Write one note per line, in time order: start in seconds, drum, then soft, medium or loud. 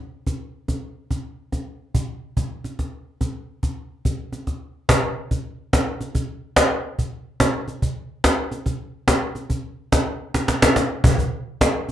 0.27 cajon bass soft
0.27 cajon slap soft
0.68 cajon bass soft
0.68 cajon slap soft
1.11 cajon bass soft
1.11 cajon slap soft
1.52 cajon bass soft
1.52 cajon slap soft
1.95 cajon bass soft
1.95 cajon slap soft
2.37 cajon bass soft
2.37 cajon slap soft
2.64 cajon slap soft
2.79 cajon bass soft
2.79 cajon slap soft
3.21 cajon bass soft
3.21 cajon slap soft
3.63 cajon bass soft
3.63 cajon slap soft
4.05 cajon bass soft
4.05 cajon slap soft
4.32 cajon slap soft
4.47 cajon bass soft
4.47 cajon slap soft
4.89 cajon bass soft
4.89 cajon slap medium
5.31 cajon bass soft
5.31 cajon slap soft
5.73 cajon bass soft
5.73 cajon slap medium
6.01 cajon slap soft
6.15 cajon bass soft
6.15 cajon slap soft
6.56 cajon bass soft
6.56 cajon slap medium
6.99 cajon bass soft
6.99 cajon slap soft
7.40 cajon bass soft
7.40 cajon slap medium
7.68 cajon slap soft
7.82 cajon bass soft
7.82 cajon slap soft
8.24 cajon bass soft
8.24 cajon slap medium
8.51 cajon slap soft
8.66 cajon bass soft
8.66 cajon slap soft
9.08 cajon bass soft
9.08 cajon slap medium
9.35 cajon slap soft
9.50 cajon bass soft
9.50 cajon slap soft
9.92 cajon bass soft
9.92 cajon slap medium
10.34 cajon slap medium
10.48 cajon slap medium
10.62 cajon slap medium
10.76 cajon slap medium
11.04 cajon bass medium
11.19 cajon bass soft
11.61 cajon bass soft
11.61 cajon slap medium
11.89 cajon slap soft